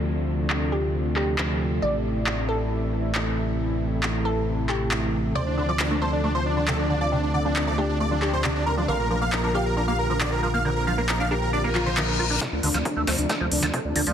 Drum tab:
HH |----------------|----------------|----------------|----------------|
CP |----x-----x-x---|----x-------x---|----x-----x-x---|----x-------x---|
SD |----------------|----------------|----------------|----------------|
BD |----------------|----------------|----------------|----------------|

HH |----------------|----------------|----------------|x-oxx-oxx-oxx-ox|
CP |----x-----x-x---|----x-------x---|----x-----x-x---|----------------|
SD |----------------|----------------|----------------|o--o--o-o--o----|
BD |----------------|----------------|----------------|o---o---o---o---|